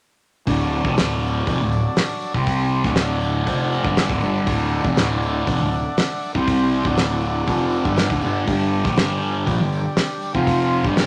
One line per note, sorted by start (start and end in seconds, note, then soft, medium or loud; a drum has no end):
0.47 0.82 D1 medium
0.47 0.84 D2 medium
0.47 0.84 A2 medium
0.47 0.84 D3 medium
0.47 2.33 F#3 medium
0.47 2.34 D4 medium
0.47 2.33 A4 medium
0.47 2.33 D5 medium
0.47 kick loud
0.47 open hi-hat medium
0.58 tambourine soft
0.72 tambourine soft
0.85 0.96 F1 medium
0.85 0.96 F2 medium
0.85 0.97 C3 medium
0.85 kick loud
0.85 tambourine soft
0.97 1.44 D1 medium
0.97 1.46 D2 medium
0.97 1.47 A2 medium
0.97 1.47 D3 medium
0.97 snare loud
0.97 open hi-hat medium
0.97 tambourine medium
1.10 tambourine soft
1.23 tambourine medium
1.35 tambourine soft
1.47 1.59 F1 medium
1.47 1.59 F2 medium
1.47 1.60 C3 medium
1.47 kick loud
1.47 open hi-hat soft
1.47 tambourine medium
1.61 1.84 D1 medium
1.61 1.80 D2 medium
1.61 1.80 A2 medium
1.72 tambourine medium
1.96 snare loud
1.96 open hi-hat medium
1.96 tambourine medium
2.09 tambourine soft
2.20 tambourine medium
2.34 2.81 C2 medium
2.34 2.84 C3 medium
2.34 2.85 C3 medium
2.34 2.84 G3 medium
2.34 2.85 G3 medium
2.34 2.84 C4 medium
2.34 2.85 G4 medium
2.34 2.85 C5 medium
2.34 kick medium
2.46 kick medium
2.46 open hi-hat medium
2.59 tambourine soft
2.71 tambourine soft
2.84 3.43 D1 medium
2.84 3.46 D2 medium
2.84 3.47 A2 medium
2.84 3.47 D3 medium
2.84 6.32 A3 medium
2.84 6.31 D4 medium
2.84 6.32 D5 medium
2.84 6.32 F#5 medium
2.84 kick loud
2.84 snare soft
2.84 tambourine soft
2.96 snare loud
2.96 open hi-hat medium
2.96 tambourine medium
3.09 tambourine soft
3.21 tambourine medium
3.34 tambourine soft
3.47 3.82 F1 medium
3.47 3.84 F2 medium
3.47 3.84 C3 loud
3.47 3.84 F3 medium
3.47 kick medium
3.47 open hi-hat soft
3.47 tambourine medium
3.72 tambourine medium
3.84 4.08 G1 medium
3.84 4.09 G2 medium
3.84 4.09 D3 medium
3.84 4.10 G3 medium
3.84 kick loud
3.97 snare loud
3.97 open hi-hat medium
3.97 tambourine medium
4.09 4.21 D1 medium
4.09 4.21 D2 medium
4.09 4.22 A2 medium
4.09 kick loud
4.21 4.46 G1 medium
4.21 4.46 G2 medium
4.21 4.47 D3 medium
4.21 4.47 G3 loud
4.21 tambourine medium
4.47 4.82 D1 medium
4.47 4.84 D2 medium
4.47 4.84 A2 medium
4.47 4.85 D3 loud
4.47 kick loud
4.47 open hi-hat medium
4.59 tambourine soft
4.72 tambourine soft
4.84 4.96 F1 loud
4.84 4.96 F2 medium
4.84 4.96 C3 medium
4.84 kick loud
4.84 tambourine soft
4.97 5.43 D1 medium
4.97 5.46 D2 medium
4.97 5.47 A2 medium
4.97 5.47 D3 medium
4.97 snare loud
4.97 open hi-hat medium
4.97 tambourine medium
5.10 tambourine soft
5.22 tambourine medium
5.47 5.58 F1 medium
5.47 5.59 F2 medium
5.47 5.60 C3 medium
5.47 kick medium
5.47 open hi-hat soft
5.47 tambourine medium
5.59 5.83 D1 medium
5.59 5.80 D2 medium
5.59 5.80 A2 medium
5.72 tambourine medium
5.97 snare loud
5.97 open hi-hat medium
5.97 tambourine medium
6.10 tambourine soft
6.22 tambourine medium
6.34 6.81 C2 medium
6.34 6.84 C3 medium
6.34 6.85 C3 medium
6.34 6.84 G3 medium
6.34 6.86 G3 medium
6.34 6.84 C4 medium
6.34 6.85 G4 medium
6.34 6.86 C5 medium
6.34 kick medium
6.34 tambourine soft
6.48 kick loud
6.48 open hi-hat medium
6.48 tambourine soft
6.59 tambourine soft
6.72 tambourine soft
6.83 7.43 D1 medium
6.83 7.46 D2 medium
6.83 7.47 A2 medium
6.83 7.47 D3 medium
6.83 8.47 A3 medium
6.83 8.46 D4 medium
6.83 10.32 D5 medium
6.83 8.46 F#5 medium
6.83 kick loud
6.83 tambourine soft
6.96 snare loud
6.96 open hi-hat soft
6.96 tambourine medium
7.09 tambourine soft
7.21 tambourine medium
7.47 7.82 F1 medium
7.47 7.84 F2 medium
7.47 7.84 C3 medium
7.47 7.85 F3 loud
7.47 kick medium
7.47 open hi-hat soft
7.47 tambourine medium
7.59 tambourine soft
7.71 tambourine medium
7.84 8.08 G1 medium
7.84 8.09 G2 medium
7.84 8.09 D3 medium
7.84 8.09 G3 loud
7.84 kick loud
7.84 tambourine soft
7.96 snare loud
7.96 open hi-hat soft
7.96 tambourine medium
8.09 8.21 D1 medium
8.09 8.21 D2 medium
8.09 8.22 A2 medium
8.09 kick loud
8.09 tambourine soft
8.21 8.45 G1 medium
8.21 8.47 G2 medium
8.21 8.47 D3 medium
8.21 8.47 G3 medium
8.21 tambourine medium
8.48 8.82 G1 medium
8.48 8.84 G2 medium
8.48 8.85 D3 medium
8.48 10.33 D3 medium
8.48 10.33 G3 medium
8.48 8.85 G3 loud
8.48 10.33 G4 medium
8.48 kick loud
8.48 open hi-hat medium
8.60 tambourine soft
8.72 tambourine soft
8.85 8.97 A#1 medium
8.85 8.96 A#2 medium
8.85 8.97 F3 medium
8.85 kick loud
8.85 snare soft
8.85 tambourine soft
8.96 9.44 G1 medium
8.96 9.46 G2 medium
8.96 9.47 D3 medium
8.96 9.47 G3 medium
8.96 snare loud
8.96 open hi-hat medium
8.96 tambourine medium
9.09 tambourine soft
9.22 tambourine medium
9.35 tambourine soft
9.46 9.59 A#1 medium
9.46 9.59 A#2 medium
9.46 9.59 F3 loud
9.46 kick medium
9.46 open hi-hat medium
9.46 tambourine medium
9.60 9.83 G1 medium
9.60 9.80 G2 medium
9.60 9.80 D3 medium
9.72 tambourine medium
9.97 snare loud
9.97 open hi-hat medium
9.97 tambourine medium
10.10 tambourine soft
10.22 tambourine medium
10.35 10.81 F1 medium
10.35 10.84 F2 medium
10.35 10.84 C3 medium
10.35 10.84 F3 medium
10.35 10.84 F4 medium
10.35 10.84 C5 medium
10.35 kick loud
10.47 kick medium
10.47 open hi-hat medium
10.60 tambourine soft
10.73 tambourine soft
10.85 11.06 G1 medium
10.85 11.06 G2 medium
10.85 11.06 D3 medium
10.85 11.06 G3 medium
10.85 11.06 G4 medium
10.85 11.06 D5 medium
10.85 kick loud
10.85 tambourine soft
10.97 snare loud
10.97 open hi-hat medium
10.97 tambourine medium